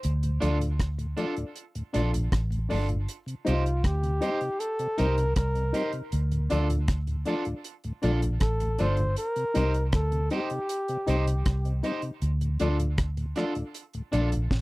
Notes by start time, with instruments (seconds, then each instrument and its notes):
0.03 fingered electric bass D2, closed hi-hat
0.23 tonewheel organ D2 A2, closed hi-hat
0.40 fingered electric bass D2, tonewheel organ F3 A3 D4, grand piano D4 F4 A4 D5, clean electric guitar D4 F4 A4, closed hi-hat
0.60 tonewheel organ D2 A2, closed hi-hat
0.80 kick, cross-stick, closed hi-hat
0.98 tonewheel organ D2 A2, closed hi-hat
1.16 tonewheel organ F3 A3 D4, grand piano D4 F4 A4 D5, clean electric guitar D4 F4 A4, closed hi-hat
1.36 tonewheel organ D2 A2, grand piano A4 D5, closed hi-hat
1.56 closed hi-hat
1.75 tonewheel organ D2 A2, closed hi-hat
1.93 fingered electric bass A#1, tonewheel organ F3 A3 D4, grand piano D4 F4 A4 D5, clean electric guitar D4 F4 A4, closed hi-hat
2.13 tonewheel organ D2 A2, muted clean electric guitar stroke, closed hi-hat
2.32 fingered electric bass A1, kick, cross-stick, closed hi-hat
2.51 tonewheel organ D2 A2, closed hi-hat
2.69 fingered electric bass G1, tonewheel organ F3 A3 D4, grand piano D4 F4 A4 D5, clean electric guitar D4 F4 A4, open hi-hat
2.89 tonewheel organ D2 A2, closed hi-hat
3.08 closed hi-hat
3.26 tonewheel organ C3, closed hi-hat
3.45 fingered electric bass C2, tonewheel organ G3 C4 D#4, grand piano D#4 G4 C5 D#5, clean electric guitar D#4 G4 C5, flugelhorn F4, closed hi-hat
3.66 closed hi-hat
3.84 fingered electric bass D2, flugelhorn G4, kick, cross-stick, closed hi-hat
4.03 tonewheel organ C3, closed hi-hat
4.21 tonewheel organ G3 C4 D#4, grand piano D#4 G4 C5 D#5, clean electric guitar D#4 G4 C5, closed hi-hat
4.41 tonewheel organ C3, closed hi-hat
4.60 flugelhorn A4, closed hi-hat
4.79 tonewheel organ C3, grand piano C5 D#5, closed hi-hat
4.98 fingered electric bass C2, tonewheel organ G3 C4 D#4, grand piano D#4 G4 C5 D#5, clean electric guitar D#4 G4 C5, flugelhorn A#4, closed hi-hat
5.18 tonewheel organ C3, closed hi-hat
5.36 fingered electric bass C2, flugelhorn A#4, kick, cross-stick, closed hi-hat
5.55 tonewheel organ C3, grand piano C5 D#5, closed hi-hat
5.73 tonewheel organ G3 C4 D#4, grand piano D#4 G4 C5 D#5, clean electric guitar D#4 G4 C5, closed hi-hat
5.92 tonewheel organ C3, closed hi-hat
6.12 fingered electric bass D2, closed hi-hat
6.32 tonewheel organ D2 A2, closed hi-hat
6.50 fingered electric bass D2, tonewheel organ F3 A3 D4, grand piano D4 F4 A4 D5, clean electric guitar D4 F4 A4, closed hi-hat
6.70 tonewheel organ D2 A2, closed hi-hat
6.88 kick, cross-stick, closed hi-hat
7.07 tonewheel organ D2 A2, closed hi-hat
7.25 tonewheel organ F3 A3 D4, grand piano D4 F4 A4 D5, clean electric guitar D4 F4 A4, closed hi-hat
7.45 tonewheel organ D2 A2, grand piano A4 D5, closed hi-hat
7.64 closed hi-hat
7.84 tonewheel organ D2 A2, closed hi-hat
8.02 fingered electric bass A#1, tonewheel organ F3 A3 D4, grand piano D4 F4 A4 D5, clean electric guitar D4 F4 A4, closed hi-hat
8.22 tonewheel organ D2 A2, muted clean electric guitar stroke, closed hi-hat
8.40 fingered electric bass A1, flugelhorn A4, kick, cross-stick, closed hi-hat
8.60 tonewheel organ D2 A2, muted clean electric guitar stroke, closed hi-hat
8.78 fingered electric bass G1, tonewheel organ F3 A3 D4, grand piano D4 F4 A4 D5, clean electric guitar D4 F4 A4, flugelhorn C5, closed hi-hat
8.97 tonewheel organ D2 A2, closed hi-hat
9.17 flugelhorn A#4, closed hi-hat
9.36 tonewheel organ C3, closed hi-hat
9.54 fingered electric bass C2, tonewheel organ G3 C4 D#4, grand piano D#4 G4 C5 D#5, clean electric guitar D#4 G4 C5, closed hi-hat
9.74 closed hi-hat
9.92 fingered electric bass D2, flugelhorn A4, kick, cross-stick, closed hi-hat
10.12 tonewheel organ C3, closed hi-hat
10.30 tonewheel organ G3 C4 D#4, grand piano D#4 G4 C5 D#5, clean electric guitar D#4 G4 C5, flugelhorn G4, closed hi-hat
10.50 tonewheel organ C3, closed hi-hat
10.69 closed hi-hat
10.88 tonewheel organ C3, grand piano C5 D#5, closed hi-hat
11.06 fingered electric bass C2, tonewheel organ G3 C4 D#4, grand piano D#4 G4 C5 D#5, clean electric guitar D#4 G4 C5, closed hi-hat
11.27 tonewheel organ C3, closed hi-hat
11.46 fingered electric bass C2, kick, cross-stick, closed hi-hat
11.65 tonewheel organ C3, grand piano C5 D#5, closed hi-hat
11.83 tonewheel organ G3 C4 D#4, grand piano D#4 G4 C5 D#5, clean electric guitar D#4 G4 C5, closed hi-hat
12.02 tonewheel organ C3, closed hi-hat
12.22 fingered electric bass D2, closed hi-hat
12.41 tonewheel organ D2 A2, closed hi-hat
12.60 fingered electric bass D2, tonewheel organ F3 A3 D4, grand piano D4 F4 A4 D5, clean electric guitar D4 F4 A4, closed hi-hat
12.79 tonewheel organ D2 A2, closed hi-hat
12.98 kick, cross-stick, closed hi-hat
13.17 tonewheel organ D2 A2, closed hi-hat
13.36 tonewheel organ F3 A3 D4, grand piano D4 F4 A4 D5, clean electric guitar D4 F4 A4, cross-stick, closed hi-hat
13.55 tonewheel organ D2 A2, grand piano A4 D5, closed hi-hat
13.74 closed hi-hat
13.94 tonewheel organ D2 A2, closed hi-hat
14.12 fingered electric bass A#1, tonewheel organ F3 A3 D4, grand piano D4 F4 A4 D5, clean electric guitar D4 F4 A4, closed hi-hat
14.32 tonewheel organ D2 A2, muted clean electric guitar stroke, closed hi-hat
14.51 fingered electric bass A1, kick, snare